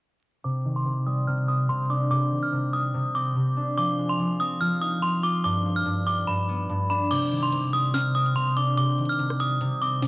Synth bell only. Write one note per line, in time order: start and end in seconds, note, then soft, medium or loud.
0.44 0.74 D6 loud
0.76 0.85 C6 medium
1.07 1.25 D#6 medium
1.27 1.46 F6 medium
1.48 1.67 D#6 medium
1.69 1.87 C6 medium
1.90 2.08 D6 medium
2.11 2.41 D6 loud
2.43 2.51 F6 medium
2.73 3.12 D#6 medium
3.15 3.74 D6 medium
3.77 4.07 D6 medium
4.09 4.18 C6 medium
4.40 4.58 D#6 medium
4.61 4.79 F6 medium
4.82 5.00 D#6 medium
5.02 5.21 C6 medium
5.23 5.42 D6 medium
5.44 5.74 D6 loud
5.76 5.85 F6 medium
6.07 6.25 D6 medium
6.27 6.86 B5 medium
6.90 7.08 B5 medium
7.11 7.41 D6 loud
7.43 7.51 C6 medium
7.73 7.91 D#6 medium
7.94 8.12 F6 medium
8.15 8.33 D#6 medium
8.36 8.54 C6 medium
8.57 8.75 D6 medium
8.77 9.07 D6 loud
9.09 9.18 F6 medium
9.40 9.79 D#6 medium
9.82 10.08 D6 medium